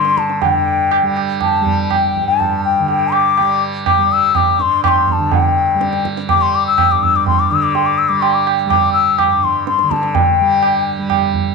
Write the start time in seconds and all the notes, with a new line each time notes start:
Already playing: G2 D3 G3 C6
0.05 tabla te
0.17 A5, tabla ke
0.30 tabla te
0.42 D3 G5, tabla tin, tabla ge
0.91 tabla na
1.03 G3
1.17 tabla na
1.41 A5, tabla na, tabla ge
1.61 G3
1.66 tabla ge
1.84 A5
1.91 A5, tabla na, tabla ge
1.95 G5
2.15 tabla ge
2.21 G2
2.27 A5
2.40 tabla tin, tabla ge
2.65 G5
2.79 D3
2.88 G5, tabla tin
3.12 D6, tabla na
3.38 G3, tabla na
3.86 D6, tabla na, tabla ge
3.98 G3
4.13 E6
4.35 D6, tabla na, tabla ge
4.58 G2 C6, tabla te
4.84 D6, tabla na, tabla ge
4.88 C6
5.08 C6, tabla ge
5.12 A5
5.18 D3
5.32 G5, tabla tin, tabla ge
5.75 G3
5.81 tabla te
5.93 tabla te
6.05 tabla ke
6.17 tabla te
6.29 D6, tabla na, tabla ge
6.33 G3
6.42 C6
6.55 D6
6.67 E6
6.78 tabla na, tabla ge
6.91 G2 D6
7.03 E6, tabla ge
7.16 D6
7.26 C6, tabla tin, tabla ge
7.40 D6
7.50 D3 E6
7.63 D6
7.75 C6, tabla tin
7.86 D6
7.98 E6
8.09 G3 D6
8.21 C6, tabla na
8.34 D6
8.47 tabla na
8.66 G3 D6
8.70 tabla na, tabla ge
8.93 E6
9.18 D6, tabla na, tabla ge
9.25 G2
9.43 C6, tabla ge
9.67 C6, tabla te
9.79 D3, tabla te
9.91 A5, tabla ke
10.03 tabla te
10.15 G5, tabla tin, tabla ge
10.41 G3
10.63 tabla na
10.98 G3
11.10 tabla na, tabla ge
11.34 tabla ge